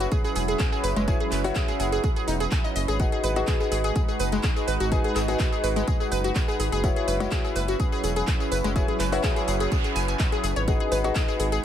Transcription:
Already playing: F#3 C#4 E4 F#4 B4 C#5 F#5
0.00 F#4, closed hi-hat, tambourine
0.12 G#4, kick, closed hi-hat, tambourine
0.24 G#4, tambourine
0.36 E1 G#4, open hi-hat, tambourine
0.48 G#4, closed hi-hat, tambourine
0.59 G#4, kick, clap, closed hi-hat, tambourine
0.72 G#4, tambourine
0.84 F#1 B4, open hi-hat, tambourine
0.96 F#1 G#3, closed hi-hat, tambourine
1.08 E4 F#4 G#4 B4 C#5 G#5, kick, closed hi-hat, tambourine
1.20 G#4, closed hi-hat
1.31 F#1 B4, clap, open hi-hat, tambourine
1.44 E4 F#4 B4 C#5 F#5, open hi-hat, tambourine
1.55 G#4, kick, clap, closed hi-hat, tambourine
1.68 G#4, closed hi-hat, tambourine
1.80 F#1 G#4, open hi-hat, tambourine
1.92 G#4, closed hi-hat, tambourine
2.04 G#4, kick, closed hi-hat, tambourine
2.16 G#4, closed hi-hat, tambourine
2.28 E1 D#4, open hi-hat, tambourine
2.40 G#4, closed hi-hat, tambourine
2.51 G#5, kick, clap, closed hi-hat, tambourine
2.64 D#5, tambourine
2.76 F#1 D#5, open hi-hat, tambourine
2.88 G#1 G#4, closed hi-hat, tambourine
3.00 G#3 D#4 F#4 G#4 B4 F#5, kick, closed hi-hat, tambourine
3.12 G#4, closed hi-hat
3.24 G#1 B4, open hi-hat, tambourine
3.36 D#4 F#4 G#4 B4 F#5, closed hi-hat, tambourine
3.47 G#4, kick, clap, closed hi-hat, tambourine
3.60 G#4, tambourine
3.72 G#1 G#4, open hi-hat, tambourine
3.84 G#4, closed hi-hat, tambourine
3.96 G#4, kick, closed hi-hat, tambourine
4.08 G#4, tambourine
4.20 F#1 B4, open hi-hat, tambourine
4.32 G#3, closed hi-hat, tambourine
4.43 G#4, kick, clap, closed hi-hat, tambourine
4.56 G#4, tambourine
4.68 G#1 B4, open hi-hat, tambourine
4.80 G#1 F#4, closed hi-hat, tambourine
4.92 D#4 F#4 G#4 B4 G#5, kick, closed hi-hat, tambourine
5.04 G#4, closed hi-hat
5.15 G#1 G#4, clap, open hi-hat, tambourine
5.28 D#4 F#4 G#4 B4 F#5, closed hi-hat, tambourine
5.39 G#4, kick, clap, closed hi-hat, tambourine
5.52 G#4, tambourine
5.64 G#1 B4, open hi-hat, tambourine
5.76 G#3, closed hi-hat, tambourine
5.88 G#4, kick, closed hi-hat, tambourine
6.00 G#4, tambourine
6.12 F#1 B4, open hi-hat, tambourine
6.24 F#4, closed hi-hat, tambourine
6.35 G#4, kick, clap, closed hi-hat, tambourine
6.48 G#4, tambourine
6.60 G#1 G#4, open hi-hat, tambourine
6.72 F#1 G#4, closed hi-hat, tambourine
6.84 F#3 C#4 E4 F#4 G#4 B4 C#5 F#5, kick, closed hi-hat, tambourine
6.96 G#4, closed hi-hat
7.08 F#1 B4, open hi-hat, tambourine
7.20 G#3 E4 F#4 B4 C#5 F#5, closed hi-hat, tambourine
7.31 G#4, kick, clap, closed hi-hat, tambourine
7.44 G#4, tambourine
7.56 F#1 B4, open hi-hat, tambourine
7.68 F#4, closed hi-hat, tambourine
7.80 G#4, kick, closed hi-hat, tambourine
7.92 G#4, tambourine
8.04 E1 G#4, open hi-hat, tambourine
8.16 G#4, closed hi-hat, tambourine
8.27 G#4, kick, clap, closed hi-hat, tambourine
8.40 G#4, tambourine
8.52 F#1 B4, open hi-hat, tambourine
8.64 F#1 G#3, closed hi-hat, tambourine
8.76 E4 F#4 G#4 B4 C#5 G#5, kick, closed hi-hat, tambourine, noise sweep
8.88 G#4, closed hi-hat
8.99 F#1 B4, clap, open hi-hat, tambourine
9.12 E4 F#4 B4 C#5 F#5, open hi-hat, tambourine
9.23 G#4, kick, clap, closed hi-hat, tambourine
9.36 G#4, closed hi-hat, tambourine
9.48 F#1 G#4, open hi-hat, tambourine
9.60 G#4, closed hi-hat, tambourine
9.72 G#4, kick, closed hi-hat, tambourine
9.84 G#4, closed hi-hat, tambourine
9.96 F#1 G#5, open hi-hat, tambourine
10.08 G#5, closed hi-hat, tambourine
10.19 D#5, kick, clap, closed hi-hat, tambourine
10.32 G#4, closed hi-hat, tambourine
10.44 F#1 G#4, open hi-hat, tambourine
10.56 G#1 C#5, closed hi-hat, tambourine
10.68 G#3 D#4 F#4 G#4 B4 F#5, kick, closed hi-hat, tambourine
10.80 G#4, closed hi-hat
10.92 G#1 B4, open hi-hat, tambourine
11.04 D#4 F#4 G#4 B4 F#5, closed hi-hat, tambourine
11.15 G#4, kick, clap, closed hi-hat, tambourine
11.28 G#4, tambourine
11.40 G#1 G#4, open hi-hat, tambourine
11.52 G#4, closed hi-hat, tambourine

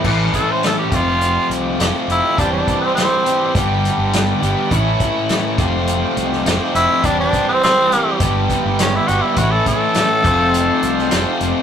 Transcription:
0.01 A1 A2 E3 A3 C#4 A4 D5, kick, crash
0.05 E4
0.34 A4, kick, closed hi-hat
0.51 C5
0.63 A4, snare, closed hi-hat
0.79 G4
0.90 F1 F2 C3 F3 A3 C4 F4 A4, kick, closed hi-hat
0.94 F4
1.21 closed hi-hat
1.50 C2, closed hi-hat
1.78 F1 F2 C3 F3 A3 C4 F4, snare, closed hi-hat
2.08 F1 E4, closed hi-hat
2.36 E1 E3 G3 C4 D4 E4 G4 C5, kick, closed hi-hat
2.41 G3
2.53 D4
2.68 kick, closed hi-hat
2.81 C4
2.94 C4, snare, closed hi-hat
3.24 E3 G3 C4 G4, closed hi-hat
3.54 G1 G2 D3 G3 A3 B3 D4 G4 B4, kick, closed hi-hat
3.85 closed hi-hat
3.98 G1
4.13 snare, closed hi-hat
4.39 G1 G2 D3 G3 B3 D4 G4, closed hi-hat
4.70 A1 A2 E3 A3 C#4 E4 C#5, kick, closed hi-hat
5.00 kick, closed hi-hat
5.29 snare, closed hi-hat
5.57 F1 F2 C3 F3 A3 C4 F4 C5, kick, closed hi-hat
5.87 closed hi-hat
6.17 C2, closed hi-hat
6.32 snare
6.45 F1 F2 C3 F3 A3 C4 F4, snare, closed hi-hat
6.75 F1 E4, closed hi-hat
7.02 E1 E3 G3 C4 D4 E4 G4 C5, kick, closed hi-hat
7.20 D4
7.33 kick, closed hi-hat
7.49 C4
7.63 C4, snare, closed hi-hat
7.90 E3 G3 C4 G4, closed hi-hat
8.19 G1 G2 D3 G3 A3 B3 D4 G4 B4, kick, closed hi-hat
8.49 kick, closed hi-hat
8.64 G1
8.79 C#4, snare, closed hi-hat
8.96 E4
9.07 G1 G2 D3 G3 B3 D4 F#4 G4, closed hi-hat
9.22 E4
9.35 A1 A2 E3 A3 C#4 E4 F#4 C#5, kick, closed hi-hat
9.51 A4
9.66 A4, kick, closed hi-hat
9.94 snare, closed hi-hat
10.22 F1 F2 C3 F3 A3 C4 F4 C5, kick, closed hi-hat
10.54 closed hi-hat
10.83 C2, closed hi-hat
10.98 snare
11.09 F1 F2 C3 F3 A3 C4 F4, snare, closed hi-hat
11.40 F1, closed hi-hat

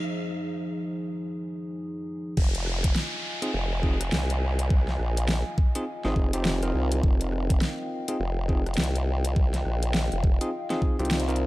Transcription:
Already playing: F3 D#4 G#4
2.37 F1 F4 D#5 G#5, kick, crash, downlifter
2.55 closed hi-hat
2.62 F5
2.66 cross-stick
2.84 kick, closed hi-hat
2.95 snare
3.42 C4 D#4 F4 G#4, closed hi-hat
3.54 F1
3.83 C4 D#4 F4 G#4, kick
4.01 cross-stick, closed hi-hat
4.12 C2, snare
4.30 closed hi-hat
4.59 closed hi-hat
4.70 kick
4.88 snare
4.99 A#1, cross-stick
5.17 closed hi-hat
5.28 snare
5.58 kick
5.75 C4 D#4 F4 G#4, closed hi-hat
6.04 G#1 C4 D#4 F4 G#4, snare
6.16 F1, kick
6.33 C4 D#4 F4 G4, closed hi-hat
6.45 snare
6.63 C4 D#4 F4 A#4, closed hi-hat
6.74 C2
6.92 closed hi-hat
7.03 F1 G5, kick
7.21 closed hi-hat
7.32 cross-stick
7.50 kick, closed hi-hat
7.61 snare
8.08 C4 D#4 F4 G#4, closed hi-hat
8.20 F1
8.49 C4 D#4 F4 G#4, kick
8.66 cross-stick, closed hi-hat
8.74 C2, snare, closed hi-hat
8.84 closed hi-hat
8.96 closed hi-hat
9.25 closed hi-hat
9.36 kick
9.54 snare, closed hi-hat
9.65 A#1, cross-stick
9.68 cross-stick
9.71 cross-stick
9.74 cross-stick
9.80 cross-stick, closed hi-hat
9.94 snare
10.12 F1, closed hi-hat
10.24 kick
10.41 C4 D#4 F4 G#4, closed hi-hat
10.70 C4 D#4 F4 G#4, snare, closed hi-hat
10.82 kick
10.99 C2 C4 D#4 F4 G4, closed hi-hat
11.05 closed hi-hat
11.11 snare, closed hi-hat
11.20 closed hi-hat
11.28 C4 D#4 F4 A#4, closed hi-hat
11.30 closed hi-hat
11.36 closed hi-hat

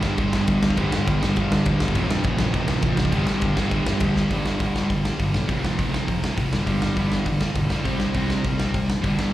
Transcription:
Already playing: G1 G2 D3 G3
0.03 G2 D3 G3, snare
0.17 G1 G2 D3 G3, kick, crash
0.33 G1, snare
0.46 G1 G2 D3 G3, kick, crash
0.63 snare
0.70 kick
0.77 G1 G2 D3 G3, kick, crash
0.92 G1, snare
1.07 G1, kick, crash
1.21 G1 G2 D3 G3, snare
1.36 G1 G2 D3 G3, kick, crash
1.51 G1, snare
1.65 D2 G2 D3 G3, kick, crash
1.80 G1, snare
1.88 kick
1.94 A1 F2 C3 F3, kick, crash
2.10 G2, snare
2.24 A1, kick, crash
2.36 F2 C3 F3, snare
2.53 A1 F2 C3 F3, kick, crash
2.68 A1, snare
2.82 A1 F2 C3 F3, kick, crash
2.97 snare
3.05 kick
3.10 G1 G2 D3 G3, kick, crash
3.15 G3
3.27 G1, snare
3.41 G1, kick, crash
3.56 G1 G2 D3 G3, snare
3.71 G1 G2 D3 G3, kick, crash
3.86 G1, snare
4.00 D2 G2 D3 G3, kick, crash
4.15 G1, snare
4.29 G1 G2 D3 G3, kick, open hi-hat
4.46 G1, snare
4.59 G1 G2 D3 G3, kick, open hi-hat
4.74 G1 G2 D3 G3, snare
4.89 G1 G2 D3, kick, open hi-hat
5.05 snare
5.18 B1 G2 D3 G3, kick, open hi-hat
5.34 snare
5.46 F1 F2 C3 F3, kick, open hi-hat
5.65 F1, snare
5.77 F1 F2 C3 F3, kick, open hi-hat
5.92 F2 C3 F3, snare
6.06 F1 F2 C3, kick, open hi-hat
6.23 F1, snare
6.36 F1 F2 C3 F3, kick, open hi-hat
6.51 G1 G2 D3 G3, snare
6.67 G1 G2 D3 G3, kick, open hi-hat
6.82 G1, snare
6.96 G1 G2 D3 G3, kick, open hi-hat
7.12 G1, snare
7.25 G1 G2 D3, kick, open hi-hat
7.41 G2 D3 G3, snare
7.54 B1 G2 D3, kick, open hi-hat
7.70 C2 C3 G3 C4, snare
7.84 C2 C3 G3 C4, kick, open hi-hat
8.00 C2, snare
8.14 C2 C3 G3 C4, kick, open hi-hat
8.30 snare
8.44 C2 C3 G3, kick, open hi-hat
8.58 C2 C3 G3 C4, snare
8.73 C2 C3 G3, kick, open hi-hat
8.89 F1, snare
9.01 G1 G2 D3 G3, kick, open hi-hat
9.05 G3
9.19 G1, snare

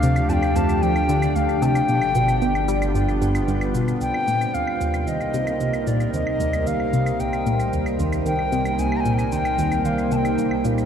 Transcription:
Already playing: D2 D3 F3 A3 D4 G4 D5 F5
0.03 C3, cabasa
0.16 cabasa, claves
0.29 F2 G5 A5, cabasa
0.43 cabasa, claves
0.56 F2 A5, cabasa
0.69 cabasa, claves
0.82 F3 G5, cabasa
0.96 cabasa, claves
1.09 D3, cabasa
1.22 cabasa, claves
1.35 D2 F5, cabasa
1.49 cabasa, claves
1.62 C3 G5 A5, cabasa
1.75 cabasa, claves
1.88 G1 B2 D3, cabasa
1.98 F4, cabasa, claves
2.05 G3
2.15 B2, cabasa
2.28 cabasa, claves
2.33 B3
2.42 B3, cabasa
2.55 cabasa, claves
2.68 G3 B4, cabasa
2.82 cabasa, claves
2.95 G2, cabasa
3.09 cabasa, claves
3.22 G2, cabasa
3.35 cabasa, claves
3.48 G2, cabasa
3.61 cabasa, claves
3.75 B2, cabasa
3.88 cabasa, claves
4.01 C2 C3 C4 C5 G5, cabasa
4.14 claves
4.28 A#2, cabasa
4.41 cabasa, claves
4.50 A#3
4.54 D#2 F5, cabasa
4.63 D#4
4.67 claves
4.73 A#4
4.81 D#2, cabasa
4.94 cabasa, claves
5.07 D#3 D#5, cabasa
5.21 cabasa, claves
5.34 C3, cabasa
5.47 cabasa, claves
5.60 C2, cabasa
5.74 cabasa, claves
5.87 A#2 D5, cabasa
6.00 cabasa, claves
6.14 D#2 D#5, cabasa
6.27 claves
6.40 D#2, cabasa
6.53 cabasa, claves
6.67 D#3 F5, cabasa
6.80 claves
6.93 C3, cabasa
7.06 cabasa, claves
7.20 C2 G5, cabasa
7.33 cabasa, claves
7.46 A#2, cabasa
7.60 cabasa, claves
7.73 D#2, cabasa
7.86 cabasa, claves
7.99 D#2, cabasa
8.13 cabasa, claves
8.26 D#3 G5, cabasa
8.39 claves
8.52 C3, cabasa
8.65 cabasa, claves
8.79 C2 G#5, cabasa
8.92 claves
8.96 A#5
9.00 G#5
9.05 A#2, cabasa
9.13 G5
9.17 G#5, cabasa, claves
9.32 D#2 G5, cabasa
9.45 cabasa, claves
9.58 D#2, cabasa
9.72 cabasa, claves
9.85 D#3 F5, cabasa
9.98 cabasa, claves
10.11 C3 A5, cabasa
10.16 G5
10.25 cabasa, claves
10.38 C2, cabasa
10.51 claves
10.65 A#2, cabasa
10.78 cabasa, claves

